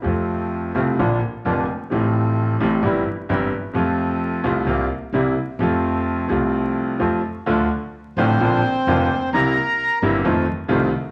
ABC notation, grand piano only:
X:1
M:4/4
L:1/8
Q:1/4=130
K:F
V:1 name="Grand piano" clef=bass
[F,,C,F,A,F]3 [C,,C,F,A,F] [B,,,B,,D,F,B,F] z [F,,,F,,D,F,B,F] z | [A,,,A,,C,F,A,F]3 [A,,,A,,C,F,A,F] [G,,,G,,C,E,G,E] z [G,,,G,,C,E,G,E] z | [F,,C,F,A,F]3 [C,,C,F,A,F] [C,,C,G,B,F] z [C,,C,G,B,E] z | [F,,C,F,A,F]3 [C,,C,F,A,F]3 [F,,C,F,A,F] z |
[K:Dm] [D,,D,F,A,F] z2 [A,,,A,,D,F,A,F] [B,,,B,,D,F,B,F] z [F,,,F,,D,F,B,F] z | [C,,C,G,B,E] z2 [G,,,G,,C,G,B,E] [F,,_E,F,A,CF] z [C,,C,E,A,CF] z |]